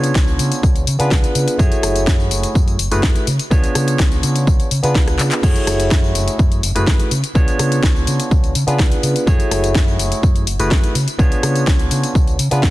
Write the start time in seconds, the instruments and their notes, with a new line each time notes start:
Already playing: fingered electric bass C#3, tine electric piano B3 D4 F4 G#4 C#5
0.04 closed hi-hat, tambourine
0.15 fingered electric bass C#2, kick, snare, tambourine
0.28 tambourine
0.39 fingered electric bass C#3, open hi-hat, tambourine
0.52 closed hi-hat, tambourine
0.63 fingered electric bass C#2, kick, tambourine
0.76 closed hi-hat, tambourine
0.87 fingered electric bass C#3, open hi-hat, tambourine
0.99 fingered electric bass C#3, tine electric piano B3 D4 F4 G#4 B4, closed hi-hat, tambourine
1.11 fingered electric bass C#2, kick, snare, tambourine
1.24 closed hi-hat, tambourine
1.35 fingered electric bass C#3, open hi-hat, tambourine
1.48 closed hi-hat, tambourine
1.58 fingered electric bass F#2, tine electric piano A3 E4 F#4 G#4 C#5, kick, tambourine
1.72 closed hi-hat, tambourine
1.83 fingered electric bass F#1, cross-stick, open hi-hat, tambourine
1.96 closed hi-hat, tambourine
2.07 fingered electric bass F#2, kick, snare, tambourine
2.20 tambourine
2.31 fingered electric bass F#1, open hi-hat, tambourine
2.43 closed hi-hat, tambourine
2.55 fingered electric bass F#2, kick, tambourine
2.68 closed hi-hat, tambourine
2.79 fingered electric bass F#1, open hi-hat, tambourine
2.91 fingered electric bass F#1, tine electric piano A3 E4 F#4 G#4 B4, closed hi-hat, tambourine
3.03 fingered electric bass F#2, kick, snare, tambourine
3.16 closed hi-hat, tambourine
3.27 fingered electric bass C#3, open hi-hat, tambourine
3.39 closed hi-hat, tambourine
3.50 fingered electric bass C#2, tine electric piano B3 D4 F4 G#4 C#5, kick, tambourine
3.64 closed hi-hat, tambourine
3.75 fingered electric bass C#3, cross-stick, open hi-hat, tambourine
3.88 closed hi-hat, tambourine
3.99 fingered electric bass C#2, kick, snare, tambourine
4.12 closed hi-hat, tambourine
4.23 fingered electric bass C#3, open hi-hat, tambourine
4.36 closed hi-hat, tambourine
4.47 fingered electric bass C#2, kick, tambourine
4.60 closed hi-hat, tambourine
4.71 fingered electric bass C#3, open hi-hat, tambourine
4.83 fingered electric bass C#3, tine electric piano B3 D4 F4 G#4 B4, closed hi-hat, tambourine
4.95 fingered electric bass C#2, kick, snare, tambourine
5.08 cross-stick, closed hi-hat, tambourine
5.19 fingered electric bass C#3, clap, open hi-hat, tambourine
5.32 clap, closed hi-hat, tambourine
5.42 fingered electric bass F#2, tine electric piano A3 E4 F#4 G#4 C#5, kick, crash, tambourine
5.56 closed hi-hat, tambourine
5.67 fingered electric bass F#1, cross-stick, open hi-hat, tambourine
5.80 closed hi-hat, tambourine
5.91 fingered electric bass F#2, kick, snare, tambourine
6.04 tambourine
6.15 fingered electric bass F#1, open hi-hat, tambourine
6.28 closed hi-hat, tambourine
6.39 fingered electric bass F#2, kick, tambourine
6.52 closed hi-hat, tambourine
6.63 fingered electric bass F#1, open hi-hat, tambourine
6.75 fingered electric bass F#1, tine electric piano A3 E4 F#4 G#4 B4, closed hi-hat, tambourine
6.87 fingered electric bass F#2, kick, snare, tambourine
7.00 closed hi-hat, tambourine
7.11 fingered electric bass C#3, open hi-hat, tambourine
7.24 closed hi-hat, tambourine
7.35 fingered electric bass C#2, tine electric piano B3 D4 F4 G#4 C#5, kick, tambourine
7.48 closed hi-hat, tambourine
7.59 fingered electric bass C#3, cross-stick, open hi-hat, tambourine
7.72 closed hi-hat, tambourine
7.83 fingered electric bass C#2, kick, snare, tambourine
7.96 tambourine
8.07 fingered electric bass C#3, open hi-hat, tambourine
8.20 closed hi-hat, tambourine
8.31 fingered electric bass C#2, kick, tambourine
8.44 closed hi-hat, tambourine
8.55 fingered electric bass C#3, open hi-hat, tambourine
8.67 fingered electric bass C#3, tine electric piano B3 D4 F4 G#4 B4, closed hi-hat, tambourine
8.79 fingered electric bass C#2, kick, snare, tambourine
8.92 closed hi-hat, tambourine
9.03 fingered electric bass C#3, open hi-hat, tambourine
9.16 closed hi-hat, tambourine
9.26 fingered electric bass F#2, tine electric piano A3 E4 F#4 G#4 C#5, kick, tambourine
9.40 closed hi-hat, tambourine
9.51 fingered electric bass F#1, cross-stick, open hi-hat, tambourine
9.64 closed hi-hat, tambourine
9.75 fingered electric bass F#2, kick, snare, tambourine
9.88 tambourine
9.99 fingered electric bass F#1, open hi-hat, tambourine
10.12 closed hi-hat, tambourine
10.23 fingered electric bass F#2, kick, tambourine
10.36 closed hi-hat, tambourine
10.47 fingered electric bass F#1, open hi-hat, tambourine
10.59 fingered electric bass F#1, tine electric piano A3 E4 F#4 G#4 B4, closed hi-hat, tambourine
10.71 fingered electric bass F#2, kick, snare, tambourine
10.84 closed hi-hat, tambourine
10.95 fingered electric bass C#3, open hi-hat, tambourine
11.08 closed hi-hat, tambourine
11.18 fingered electric bass C#2, tine electric piano B3 D4 F4 G#4 C#5, kick, tambourine
11.32 closed hi-hat, tambourine
11.43 fingered electric bass C#3, cross-stick, open hi-hat, tambourine
11.56 closed hi-hat, tambourine
11.67 fingered electric bass C#2, kick, snare, tambourine
11.79 closed hi-hat, tambourine
11.91 fingered electric bass C#3, open hi-hat, tambourine
12.04 closed hi-hat, tambourine
12.15 fingered electric bass C#2, kick, tambourine
12.27 closed hi-hat, tambourine
12.39 fingered electric bass C#3, open hi-hat, tambourine
12.51 fingered electric bass C#3, tine electric piano B3 D4 F4 G#4 B4, closed hi-hat, tambourine
12.63 fingered electric bass C#2, kick, snare, tambourine